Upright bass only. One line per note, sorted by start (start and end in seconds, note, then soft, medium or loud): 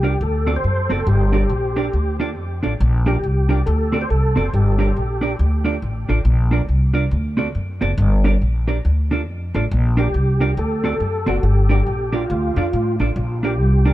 0.00 0.14 C2 medium
0.21 0.57 D2 loud
0.64 0.87 F#2 medium
0.90 1.04 F#1 medium
1.07 1.43 G1 loud
1.50 1.86 A#1 medium
1.93 2.37 D2 medium
2.37 2.59 F2 medium
2.64 2.77 A1 medium
2.80 3.17 A#1 loud
3.23 3.60 C2 medium
3.67 4.03 D2 loud
4.10 4.33 C2 medium
4.37 4.51 F#1 medium
4.54 4.90 G1 loud
4.97 5.33 A#1 medium
5.39 5.76 D2 loud
5.82 6.05 A1 medium
6.09 6.23 A1 medium
6.25 6.62 A#1 loud
6.69 7.05 C2 medium
7.11 7.48 D2 loud
7.55 7.78 F#2 medium
7.82 7.96 F#1 medium
7.98 8.35 G1 loud
8.41 8.78 A#1 medium
8.85 9.27 D2 loud
9.27 9.50 F2 medium
9.54 9.68 A1 medium
9.71 10.08 A#1 loud
10.14 10.51 C2 medium
10.57 10.94 D2 loud
11.00 11.23 F#2 medium
11.27 11.41 F#1 medium
11.43 11.80 G1 loud
11.87 12.23 A#1 medium
12.30 12.53 D2 loud
12.56 12.70 F2 medium
12.73 12.96 A2 loud
13.00 13.14 A1 medium
13.16 13.59 A#1 loud
13.59 13.93 C2 medium